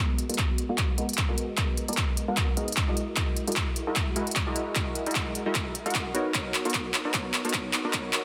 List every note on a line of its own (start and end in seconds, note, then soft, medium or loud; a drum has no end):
0.00 0.27 G#1 loud
0.00 0.27 G#3 medium
0.00 0.27 B3 medium
0.00 0.27 F#4 medium
0.00 0.27 A#4 medium
0.00 0.27 D#5 medium
0.18 closed hi-hat medium
0.29 0.67 G#1 medium
0.29 0.67 G#3 medium
0.29 0.67 B3 medium
0.29 0.67 F#4 medium
0.29 0.67 A#4 medium
0.29 0.67 D#5 medium
0.29 closed hi-hat medium
0.34 closed hi-hat medium
0.38 kick medium
0.38 clap soft
0.38 closed hi-hat medium
0.58 closed hi-hat medium
0.69 0.96 G#1 loud
0.69 0.96 G#3 medium
0.69 0.96 B3 medium
0.69 0.96 F#4 medium
0.69 0.96 A#4 medium
0.69 0.96 F#5 medium
0.78 kick loud
0.78 clap soft
0.78 closed hi-hat medium
0.98 1.27 G#1 medium
0.98 1.10 G#3 medium
0.98 1.10 B3 medium
0.98 1.10 F#4 medium
0.98 1.10 A#4 medium
0.98 1.10 D#5 medium
0.98 closed hi-hat medium
1.09 closed hi-hat soft
1.13 closed hi-hat medium
1.18 kick medium
1.18 clap medium
1.18 closed hi-hat medium
1.29 1.56 G#1 medium
1.29 1.55 G#3 medium
1.29 1.55 B3 medium
1.29 1.55 F#4 medium
1.29 1.55 A#4 medium
1.29 1.55 D#5 medium
1.38 closed hi-hat medium
1.57 1.86 G#1 loud
1.57 1.86 G#3 medium
1.57 1.86 B3 medium
1.57 1.86 F#4 medium
1.57 1.86 A#4 medium
1.57 1.86 D#5 medium
1.57 kick medium
1.57 clap soft
1.57 closed hi-hat medium
1.77 closed hi-hat medium
1.88 2.26 G#1 loud
1.88 2.26 G#3 medium
1.88 2.26 B3 medium
1.88 2.26 F#4 medium
1.88 2.26 A#4 medium
1.88 2.26 D#5 medium
1.88 closed hi-hat soft
1.93 closed hi-hat medium
1.97 kick medium
1.97 clap soft
1.97 closed hi-hat medium
2.17 closed hi-hat medium
2.28 2.55 G#1 medium
2.28 2.55 G#3 medium
2.28 2.55 B3 medium
2.28 2.55 F#4 medium
2.28 2.55 A#4 medium
2.28 2.55 F#5 medium
2.37 kick loud
2.37 clap soft
2.37 closed hi-hat medium
2.57 2.86 G#2 medium
2.57 2.69 G#3 medium
2.57 2.69 B3 medium
2.57 2.69 F#4 medium
2.57 2.69 A#4 medium
2.57 2.69 D#5 medium
2.57 closed hi-hat medium
2.68 closed hi-hat soft
2.72 closed hi-hat medium
2.77 kick medium
2.77 clap medium
2.77 closed hi-hat medium
2.88 3.15 F#1 medium
2.88 3.14 G#3 medium
2.88 3.15 E4 medium
2.88 3.14 F#4 medium
2.88 3.14 A#4 medium
2.88 3.14 D#5 medium
2.97 closed hi-hat medium
3.17 3.45 F#1 medium
3.17 3.45 G#3 medium
3.17 3.45 E4 medium
3.17 3.45 F#4 medium
3.17 3.45 A#4 medium
3.17 3.45 D#5 medium
3.17 kick medium
3.17 clap medium
3.17 closed hi-hat medium
3.37 closed hi-hat medium
3.47 3.85 F#1 medium
3.47 3.85 G#3 medium
3.47 3.85 E4 medium
3.47 3.85 F#4 medium
3.47 3.85 A#4 medium
3.47 3.85 D#5 medium
3.47 closed hi-hat soft
3.52 closed hi-hat medium
3.56 kick medium
3.56 clap medium
3.56 closed hi-hat medium
3.76 closed hi-hat medium
3.87 4.14 F#1 medium
3.87 4.14 G#3 medium
3.87 4.14 E4 medium
3.87 4.14 F#4 medium
3.87 4.14 A#4 medium
3.87 4.14 E5 medium
3.96 kick loud
3.96 clap medium
3.96 closed hi-hat medium
4.16 4.45 F#1 loud
4.16 4.28 G#3 medium
4.16 4.28 E4 medium
4.16 4.28 F#4 medium
4.16 4.28 A#4 medium
4.16 4.28 D#5 medium
4.16 closed hi-hat medium
4.27 closed hi-hat soft
4.31 closed hi-hat medium
4.36 kick medium
4.36 clap medium
4.36 closed hi-hat medium
4.47 4.74 F#1 medium
4.47 4.73 G#3 medium
4.47 4.73 E4 medium
4.47 4.73 F#4 medium
4.47 4.73 A#4 medium
4.47 4.73 D#5 loud
4.56 closed hi-hat medium
4.76 5.04 F#1 medium
4.76 5.04 G#3 medium
4.76 5.04 E4 medium
4.76 5.04 F#4 medium
4.76 5.04 A#4 medium
4.76 5.04 D#5 medium
4.76 kick loud
4.76 clap medium
4.76 closed hi-hat medium
4.95 closed hi-hat medium
5.06 5.44 F#1 loud
5.06 5.44 G#3 medium
5.06 5.44 E4 medium
5.06 5.44 F#4 medium
5.06 5.44 A#4 medium
5.06 5.44 D#5 medium
5.06 closed hi-hat soft
5.11 closed hi-hat medium
5.15 kick medium
5.15 clap medium
5.15 closed hi-hat medium
5.35 closed hi-hat medium
5.46 5.84 F#1 medium
5.46 5.73 G#3 medium
5.46 5.73 E4 medium
5.46 5.73 F#4 medium
5.46 5.73 A#4 medium
5.46 5.73 E5 medium
5.55 kick loud
5.55 clap medium
5.55 closed hi-hat medium
5.75 closed hi-hat medium
5.86 6.13 F#2 loud
5.86 6.12 G#3 medium
5.86 6.12 E4 medium
5.86 6.12 F#4 medium
5.86 6.12 A#4 medium
5.86 6.12 F#5 medium
5.86 closed hi-hat soft
5.90 closed hi-hat medium
5.95 kick medium
5.95 clap medium
5.95 closed hi-hat medium
6.14 6.33 B1 loud
6.14 6.32 B3 loud
6.14 6.32 D#4 medium
6.14 6.32 F#4 medium
6.14 6.32 A#4 medium
6.14 6.32 C#5 loud
6.14 closed hi-hat medium
6.34 6.63 B3 medium
6.34 6.63 D#4 medium
6.34 6.63 F#4 medium
6.34 6.63 A#4 medium
6.34 6.63 C#5 medium
6.34 kick medium
6.34 clap medium
6.34 closed hi-hat medium
6.54 clap medium
6.54 closed hi-hat medium
6.65 7.03 B1 loud
6.65 7.02 B3 medium
6.65 7.02 D#4 medium
6.65 7.02 F#4 medium
6.65 7.02 A#4 medium
6.65 7.02 C#5 medium
6.65 closed hi-hat soft
6.70 closed hi-hat medium
6.74 kick medium
6.74 clap medium
6.74 closed hi-hat medium
6.94 clap medium
6.94 closed hi-hat medium
7.05 7.12 B1 loud
7.05 7.13 B3 medium
7.05 7.13 D#4 medium
7.05 7.13 F#4 medium
7.05 7.13 A#4 medium
7.05 7.13 D#5 medium
7.14 7.43 B1 medium
7.14 7.42 B3 medium
7.14 7.42 D#4 medium
7.14 7.42 C#5 medium
7.14 kick loud
7.14 clap medium
7.14 closed hi-hat medium
7.34 clap medium
7.34 closed hi-hat medium
7.45 7.82 B1 loud
7.45 7.82 B3 medium
7.45 7.82 D#4 medium
7.45 7.82 F#4 medium
7.45 7.82 A#4 medium
7.45 7.82 C#5 medium
7.45 closed hi-hat soft
7.49 closed hi-hat medium
7.54 kick medium
7.54 clap medium
7.54 closed hi-hat medium
7.73 clap medium
7.73 closed hi-hat medium
7.84 7.92 B1 loud
7.84 7.92 B3 medium
7.84 7.92 D#4 medium
7.84 7.92 F#4 medium
7.84 7.92 A#4 medium
7.84 7.92 D#5 medium
7.93 8.22 B1 loud
7.93 8.22 B3 medium
7.93 8.22 D#4 medium
7.93 8.22 F#4 medium
7.93 8.22 A#4 medium
7.93 8.22 C#5 medium
7.93 kick loud
7.93 clap medium
7.93 closed hi-hat medium
8.13 clap medium
8.13 closed hi-hat medium